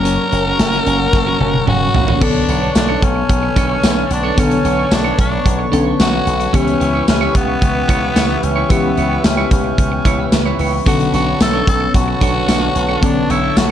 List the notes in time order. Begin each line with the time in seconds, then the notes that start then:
Already playing: F#1 F#3 A#3 C#4 A#4 C#5 F#5 C#6
0.04 C#4 F#4 A#4, closed hi-hat
0.18 muted clean electric guitar stroke
0.32 F#1 C#4 F#4 A#4, closed hi-hat
0.45 C#4 F#4 A#4
0.59 F#1, snare, closed hi-hat
0.72 C#4 F#4 A#4, closed hi-hat
0.86 F#1 C#4 F#4 A#4, closed hi-hat
1.00 muted clean electric guitar stroke
1.13 F#1, muted clean electric guitar stroke, kick, snare
1.26 C#4 F#4 A#4
1.40 F#1 C#4 F#4 A#4, high tom
1.53 muted clean electric guitar stroke, high tom
1.67 F#1 C#4 F#4 A#4, mid tom
1.81 muted clean electric guitar stroke
1.94 A#1, muted clean electric guitar stroke, floor tom
2.07 C#4 F#4 A#4, floor tom
2.20 B1 D3 B3 D4 A4 B4 C#5 A5 C#6, kick, crash
2.48 B1 D4 A4 C#5, closed hi-hat
2.61 D4 A4 C#5
2.75 B1 D4, snare, closed hi-hat, tambourine
2.89 D4 A4 C#5
3.02 B1 C#4, muted clean electric guitar stroke, kick, closed hi-hat
3.16 muted clean electric guitar stroke
3.29 B1, muted clean electric guitar stroke, kick, closed hi-hat
3.43 muted clean electric guitar stroke
3.56 B1 D4 A4 C#5, kick, closed hi-hat
3.69 D4 A4 C#5
3.83 B1 D4 A4 C#5, snare, closed hi-hat, tambourine
3.97 muted clean electric guitar stroke
4.10 B1 D4, muted clean electric guitar stroke, closed hi-hat
4.23 D4 A4 C#5
4.37 B1 D3 B3 C#4 D4 A4 C#5, kick, closed hi-hat
4.51 closed hi-hat
4.64 B1 D4 A4 C#5, closed hi-hat
4.77 D4 A4 C#5
4.91 B1 D4, snare, closed hi-hat, tambourine
5.04 D4 A4 C#5
5.18 B1 D4, muted clean electric guitar stroke, kick, closed hi-hat
5.32 muted clean electric guitar stroke
5.45 B1, muted clean electric guitar stroke, kick, closed hi-hat
5.59 muted clean electric guitar stroke
5.72 B1 D3 B3 C#4 D4 A4 C#5, closed hi-hat
5.85 D4 A4 C#5
5.99 B1 F#4, muted clean electric guitar stroke, snare, closed hi-hat, tambourine
6.13 muted clean electric guitar stroke
6.27 B1, closed hi-hat
6.40 muted clean electric guitar stroke, closed hi-hat
6.53 C#2 E3 B3 C#4 E4 G4 B4 C#5 E5 G5, kick, closed hi-hat
6.68 closed hi-hat
6.80 C#2 E4 B4 C#5, closed hi-hat
6.94 E4 B4 C#5
7.08 C#2 C#4, snare, closed hi-hat, tambourine
7.21 E4 B4 C#5
7.35 C#2 B3, muted clean electric guitar stroke, kick, closed hi-hat
7.48 muted clean electric guitar stroke
7.62 C#2, muted clean electric guitar stroke, kick, closed hi-hat
7.75 muted clean electric guitar stroke
7.88 C#2 E4 B4 C#5, kick, closed hi-hat
8.02 E4 B4 C#5
8.15 C#2 E4 B4 C#5, snare, closed hi-hat, tambourine
8.29 muted clean electric guitar stroke
8.43 C#2 C#4, muted clean electric guitar stroke, closed hi-hat
8.56 E4 B4 C#5
8.69 C#2 E3 B3 C#4 E4 G4 B4 C#5, kick, closed hi-hat
8.97 C#2 E4 B4 C#5, closed hi-hat
9.10 E4 B4 C#5
9.24 C#2 C#4, muted clean electric guitar stroke, snare, closed hi-hat, tambourine
9.37 E4 B4 C#5
9.51 C#2 C#4, kick, closed hi-hat
9.65 muted clean electric guitar stroke
9.78 C#2, muted clean electric guitar stroke, kick, closed hi-hat
9.92 muted clean electric guitar stroke
10.05 C#2 E4 B4 C#5, kick, closed hi-hat
10.18 E4 B4 C#5
10.32 C#2, muted clean electric guitar stroke, snare, closed hi-hat, tambourine
10.46 E4 B4 C#5
10.59 C#2 E4 B4 C#5, open hi-hat
10.73 muted clean electric guitar stroke
10.85 B1 C#3 B3 C#4 D4 F#4 A4 C#5 A5, kick, closed hi-hat
10.92 D3
11.00 closed hi-hat
11.13 B1 D4 F#4 A4 C#5, closed hi-hat
11.26 D4 A4 C#5
11.40 B1 A4, muted clean electric guitar stroke, snare, closed hi-hat, tambourine
11.53 D4 A4 C#5
11.67 B1 A4, muted clean electric guitar stroke, kick, closed hi-hat
11.81 muted clean electric guitar stroke
11.94 B1 F#4, muted clean electric guitar stroke, kick, closed hi-hat
12.08 muted clean electric guitar stroke
12.21 B1 D4 A4 C#5, kick, closed hi-hat
12.35 D4 A4 C#5
12.48 B1 D4 A4 C#5, snare, closed hi-hat, tambourine
12.62 muted clean electric guitar stroke
12.75 B1, muted clean electric guitar stroke, closed hi-hat
12.88 D4 A4 C#5
13.01 B1 D3 B3 C#4 D4 A4 C#5, kick, closed hi-hat
13.29 B1 D4 E4 A4 C#5, closed hi-hat
13.43 D4 A4 C#5
13.56 B1 F#4, muted clean electric guitar stroke, snare, closed hi-hat, tambourine